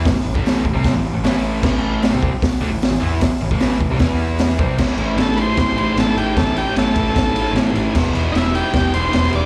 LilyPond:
<<
  \new Staff \with { instrumentName = "Transistor combo organ" } { \time 4/4 \key a \major \tempo 4 = 152 r1 | r1 | r1 | r4 a'8 <b' c''>4. a'8 g'8 |
a'8 g'8 a'2 r4 | r4 <dis' e'>8 g'4 c''4 d''8 | }
  \new Staff \with { instrumentName = "Overdriven electric guitar" } { \time 4/4 \key a \major <a, e>16 r16 <a, e>16 <a, e a>8. <a, e>16 <c g c'>8 <a, e>8 <a, e>16 <a, e a>4 | <a, e a>4~ <a, e a>16 <c g c'>8 r8. <d a>16 <a, e>8 <a, e>16 <e b e'>8 | <a, e>16 r16 <a, e>16 <a, e a>8. <a, e>16 <c g>16 <e b e'>4. <c g c'>8 | <a, e a cis' e'>8 <a cis' e'>8 <a, e a cis' e'>8 <a cis' e'>4 <a cis' e'>8 <e a cis' e'>4 |
<a, e a cis' e'>8 <a cis' e'>8 <a, e a cis' e'>8 <a cis' e'>4 <a cis' e'>8 <e a cis' e'>4 | <e gis b e'>8 <gis b e'>8 <e gis b e'>8 <gis b e'>4 <gis b e'>8 <e gis b e'>4 | }
  \new Staff \with { instrumentName = "Picked electric bass" } { \clef bass \time 4/4 \key a \major a,,16 r16 a,,16 a,,8. a,,16 c,8 a,,8 a,,16 a,,4 | a,,4~ a,,16 c,8 r8. d,16 a,,8 a,,16 e,8 | a,,16 r16 a,,16 a,,8. a,,16 c,16 e,4. c,8 | a,,8 a,,8 a,,4 a,,8 a,,8 a,,8 a,,8 |
a,,4 a,,8 a,,8 a,,8 a,,8 a,,8 a,,8 | e,,8 e,,8 e,,4 e,,8 e,,8 e,,8 e,,8 | }
  \new DrumStaff \with { instrumentName = "Drums" } \drummode { \time 4/4 <hho bd sn>8. bd16 <hho sn>8 bd8 <hho bd sn>4 <hho sn>4 | <cymc bd sn>4 <hho sn>8 bd8 <hho bd sn>4 <hho sn>4 | <hho bd sn>8. bd16 <hho sn>8 bd8 <hho bd sn>4 <hho sn>8 bd8 | <cymc bd sn>8 cymr8 <cymr sn>8 cymr8 <bd cymr sn>8 cymr8 <cymr sn>8 cymr8 |
<bd cymr sn>8 cymr8 <cymr sn>8 <bd cymr>8 <bd cymr sn>8 cymr8 <cymr sn>8 cymr8 | <cymc bd sn>8 cymr8 <cymr sn>8 cymr8 <bd cymr sn>8 cymr8 <cymr sn>8 cymr8 | }
>>